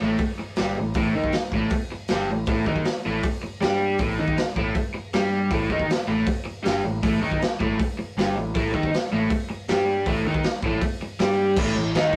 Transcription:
0.02 A1 A2 A3
0.18 muted picked electric bass stroke, muted overdriven electric guitar stroke, kick, open hi-hat
0.40 muted overdriven electric guitar stroke, muted picked electric bass stroke
0.56 G1 G2 G3, snare, open hi-hat
0.77 A1 A2
0.94 A1 A2 A3, kick, open hi-hat
1.15 D#2 D#3 D#4
1.24 kick
1.32 muted overdriven electric guitar stroke, muted picked electric bass stroke, snare, open hi-hat
1.52 A1 A2 A3, kick
1.70 muted picked electric bass stroke, muted overdriven electric guitar stroke, kick, open hi-hat
1.92 muted overdriven electric guitar stroke, muted picked electric bass stroke
2.08 G1 G2, snare, open hi-hat
2.12 G3
2.30 A1 A2
2.46 A1 A2 A3, kick, open hi-hat
2.66 D#2 D#3 D#4, kick
2.76 kick
2.85 muted overdriven electric guitar stroke, muted picked electric bass stroke, snare, open hi-hat
3.05 A1 A2 A3
3.23 muted picked electric bass stroke, muted overdriven electric guitar stroke, kick, open hi-hat
3.43 muted overdriven electric guitar stroke, muted picked electric bass stroke
3.61 G2 G3 G4, snare, open hi-hat
3.98 A1 A2 A3, kick, open hi-hat
4.19 D#2 D#3 D#4
4.28 kick
4.37 muted picked electric bass stroke, muted overdriven electric guitar stroke, snare, open hi-hat
4.56 A1 A2 A3, kick
4.75 muted picked electric bass stroke, muted overdriven electric guitar stroke, kick, open hi-hat
4.94 muted overdriven electric guitar stroke, muted picked electric bass stroke
5.13 G2 G3 G4, snare, open hi-hat
5.51 A1 A2 A3, kick, open hi-hat
5.70 D#2 D#3 D#4, kick
5.79 kick
5.89 muted overdriven electric guitar stroke, muted picked electric bass stroke, snare, open hi-hat
6.08 A1 A2 A3
6.27 muted picked electric bass stroke, muted overdriven electric guitar stroke, kick, open hi-hat
6.45 muted overdriven electric guitar stroke, muted picked electric bass stroke
6.63 G1 G2 G3, snare, open hi-hat
6.84 A1 A2
7.03 A1 A2 A3, kick, open hi-hat
7.21 D#2 D#3 D#4
7.32 kick
7.40 muted overdriven electric guitar stroke, muted picked electric bass stroke, snare, open hi-hat
7.59 A1 A2 A3, kick
7.79 muted overdriven electric guitar stroke, muted picked electric bass stroke, kick, open hi-hat
7.99 muted overdriven electric guitar stroke, muted picked electric bass stroke
8.17 G1 G2 G3, snare, open hi-hat
8.36 A1 A2
8.55 A1 A2 A3, kick, open hi-hat
8.74 D#2 D#3 D#4, kick
8.83 kick
8.92 muted overdriven electric guitar stroke, muted picked electric bass stroke, snare, open hi-hat
9.12 A1 A2 A3
9.30 muted overdriven electric guitar stroke, muted picked electric bass stroke, kick, open hi-hat
9.49 muted picked electric bass stroke, muted overdriven electric guitar stroke
9.68 G2 G3 G4, snare, open hi-hat
10.06 A1 A2 A3, kick, open hi-hat
10.25 D#2 D#3 D#4
10.34 kick
10.43 muted picked electric bass stroke, muted overdriven electric guitar stroke, snare, open hi-hat
10.63 A1 A2 A3, kick
10.81 muted picked electric bass stroke, muted overdriven electric guitar stroke, kick, open hi-hat
11.01 muted picked electric bass stroke, muted overdriven electric guitar stroke
11.19 G2 G3 G4, snare, open hi-hat
11.57 A1 A2 A3, kick, crash
11.77 A1 A2
11.95 D#2 D#3 D#4, snare, crash
12.13 muted picked electric bass stroke, kick

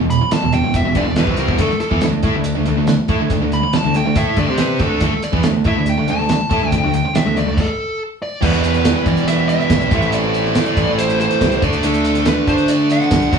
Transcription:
0.00 E1 E2 B2
0.10 B5, snare, closed hi-hat
0.21 muted distorted electric guitar stroke, muted picked electric bass stroke
0.31 A5, muted distorted electric guitar stroke, muted picked electric bass stroke, snare, closed hi-hat
0.42 E1 E2 B2
0.52 E1 E2 B2 G5, closed hi-hat
0.64 E1 E2 B2
0.74 E1 E2 B2 E5, kick, closed hi-hat
0.85 E1 E2 B2
0.95 G1 G2 D3 D5, kick, closed hi-hat
1.07 E1 E2 B2
1.16 E1 E2 B2 B4, snare, closed hi-hat
1.27 C2 C3 G3 C4, kick
1.37 A#4, closed hi-hat
1.49 E1 E2 B2, kick
1.58 D2 D3 A3 A4, kick, closed hi-hat
1.70 muted distorted electric guitar stroke, muted picked electric bass stroke, snare
1.80 A4, snare, closed hi-hat
1.91 E2 E3 B3, kick
2.01 D2 D3 A3, snare, closed hi-hat
2.23 A2 A3 E4, kick, closed hi-hat
2.35 D2 D3 A3
2.44 closed hi-hat
2.55 D2 D3 A3
2.65 D2 D3 A3, closed hi-hat
2.77 D2 D3 A3
2.87 snare, closed hi-hat
3.08 A2 A3 E4, kick, closed hi-hat
3.20 D2 D3 A3
3.30 D2 D3 A3, kick, closed hi-hat
3.42 D2 D3 A3
3.52 B5, snare, closed hi-hat
3.63 muted distorted electric guitar stroke, muted picked electric bass stroke
3.73 A5, muted distorted electric guitar stroke, muted picked electric bass stroke, snare, closed hi-hat
3.84 D2 D3 A3
3.94 D2 D3 A3 G5, closed hi-hat
4.05 D2 D3 A3
4.15 A2 A3 E4 A4 E5, kick, closed hi-hat
4.36 D2 D3 A3 D5, kick, closed hi-hat
4.48 C3 C4 G4 C5
4.58 B4, snare, closed hi-hat
4.79 D2 D3 A3 D4 A4, kick, closed hi-hat
5.00 D2 D3 A3 A4, kick, closed hi-hat
5.12 muted distorted electric guitar stroke, muted picked electric bass stroke
5.22 D5, snare, closed hi-hat
5.32 E2 E3 B3, kick
5.43 D2 D3 A3, snare, closed hi-hat
5.64 A2 A3 E4 E5, kick, closed hi-hat
5.76 D2 D3 A3
5.86 G5, closed hi-hat
5.98 D2 D3 A3
6.08 D2 D3 A3 A5, closed hi-hat
6.19 D2 D3 A3
6.29 snare, closed hi-hat
6.50 A2 A3 E4, kick, closed hi-hat
6.61 D2 D3 A3
6.70 D2 D3 A3 G5, kick, closed hi-hat
6.83 D2 D3 A3
6.94 G5, closed hi-hat
7.05 muted distorted electric guitar stroke, muted picked electric bass stroke
7.15 E5, muted distorted electric guitar stroke, muted picked electric bass stroke, snare, closed hi-hat
7.26 D2 D3 A3
7.36 D2 D3 A3 D5, closed hi-hat
7.47 D2 D3 A3
7.58 A4, kick, crash
8.22 D5
8.41 E2 B2 E3 G3 B3 E4 B4, kick, crash
8.53 closed hi-hat
8.64 closed hi-hat
8.74 snare, closed hi-hat
8.85 snare, closed hi-hat
9.06 E3 D5, kick, closed hi-hat
9.17 closed hi-hat
9.26 E3 G3 B3 E4 E5, closed hi-hat
9.49 E5, closed hi-hat
9.60 snare
9.70 B1, kick, snare, closed hi-hat
9.81 closed hi-hat
9.91 A1 A2 E3 A3 C4 E4, kick, closed hi-hat
10.02 closed hi-hat
10.12 D5, closed hi-hat
10.34 closed hi-hat
10.45 snare
10.55 snare, closed hi-hat
10.66 closed hi-hat
10.76 A1 A2 E3 A3 C4 E4, kick, closed hi-hat
10.98 C5, closed hi-hat
11.10 closed hi-hat
11.20 C5, closed hi-hat
11.30 snare, closed hi-hat
11.41 C2, kick, snare, closed hi-hat
11.52 closed hi-hat
11.62 D2 D3 A3 D4 F#4 D5, kick, closed hi-hat
11.73 closed hi-hat
11.83 D2 A4, closed hi-hat
11.94 closed hi-hat
12.05 closed hi-hat
12.15 snare, closed hi-hat
12.26 B4, snare, closed hi-hat
12.46 D3 A3 D4 F#4 C5, kick, closed hi-hat
12.58 closed hi-hat
12.68 D5, closed hi-hat
12.90 F#5, closed hi-hat
13.01 snare
13.11 C2, kick, snare, closed hi-hat
13.22 closed hi-hat
13.31 B1 B2 F#3 B3 D4 F#4, kick, closed hi-hat

